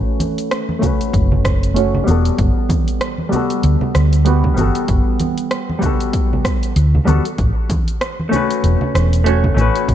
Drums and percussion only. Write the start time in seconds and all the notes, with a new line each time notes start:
0.20 closed hi-hat, high conga, cabasa
0.38 closed hi-hat, cabasa
0.51 cross-stick, closed hi-hat, cabasa
0.69 high conga
0.82 kick, low conga, cabasa
1.01 closed hi-hat, cabasa
1.14 kick, closed hi-hat, cabasa
1.32 low conga
1.45 kick, cross-stick, closed hi-hat, cabasa
1.63 closed hi-hat, cabasa
1.76 closed hi-hat, cabasa
1.94 low conga
2.08 high conga, cabasa
2.25 closed hi-hat, cabasa
2.38 kick, closed hi-hat, cabasa
2.69 kick, closed hi-hat, high conga, cabasa
2.88 closed hi-hat, cabasa
3.01 cross-stick, closed hi-hat, cabasa
3.18 high conga
3.33 low conga, cabasa
3.50 closed hi-hat, cabasa
3.63 closed hi-hat, cabasa
3.81 low conga
3.95 cross-stick, closed hi-hat, cabasa
4.13 closed hi-hat, cabasa
4.26 closed hi-hat, cabasa
4.44 kick, low conga
4.57 high conga, cabasa
4.75 closed hi-hat, cabasa
4.88 kick, closed hi-hat, cabasa
5.20 closed hi-hat, high conga, cabasa
5.38 closed hi-hat, cabasa
5.51 cross-stick, closed hi-hat, cabasa
5.70 high conga
5.82 kick, low conga, cabasa
6.00 closed hi-hat, cabasa
6.13 kick, closed hi-hat, cabasa
6.33 low conga
6.45 kick, cross-stick, closed hi-hat, cabasa
6.63 closed hi-hat, cabasa
6.76 closed hi-hat, cabasa
6.95 low conga
7.08 high conga, cabasa
7.25 closed hi-hat, cabasa
7.38 kick, closed hi-hat, cabasa
7.70 kick, closed hi-hat, high conga, cabasa
7.88 closed hi-hat, cabasa
8.01 cross-stick, closed hi-hat, cabasa
8.20 high conga
8.33 low conga, cabasa
8.51 closed hi-hat, cabasa
8.64 closed hi-hat, cabasa
8.81 low conga
8.95 cross-stick, closed hi-hat, cabasa
9.13 closed hi-hat, cabasa
9.26 closed hi-hat, cabasa
9.44 kick, low conga
9.57 high conga, cabasa
9.76 closed hi-hat, cabasa
9.88 kick, closed hi-hat, cabasa